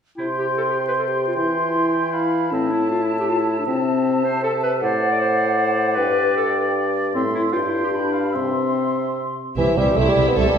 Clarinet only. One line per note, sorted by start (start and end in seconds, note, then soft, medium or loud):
0.17 0.27 E4 soft
0.38 0.47 G4 soft
0.57 0.62 A4 soft
0.70 0.78 G4 soft
0.88 0.92 B4 soft
0.98 1.09 A4 soft
1.07 1.26 G4 soft
1.27 1.31 F4 soft
1.35 2.53 E4 medium
2.52 2.71 C4 medium
2.70 2.89 E4 soft
2.90 3.03 F4 medium
3.01 3.19 E4 soft
3.19 3.31 G4 soft
3.29 3.40 F4 soft
3.39 3.58 E4 soft
3.59 3.66 D4 soft
3.66 4.26 C4 medium
4.24 4.43 C5 medium
4.43 4.52 A4 medium
4.63 4.71 B4 medium
4.81 5.13 C5 medium
5.11 5.20 D5 medium
5.20 5.58 C5 medium
5.58 5.97 C5 medium
5.95 6.35 B4 medium
6.36 6.56 A4 medium
7.15 7.24 C4 medium
7.34 7.43 E4 soft
7.52 7.57 F4 soft
7.63 7.83 E4 soft
7.84 7.88 G4 soft
7.92 8.36 D4 soft
8.35 9.17 C4 soft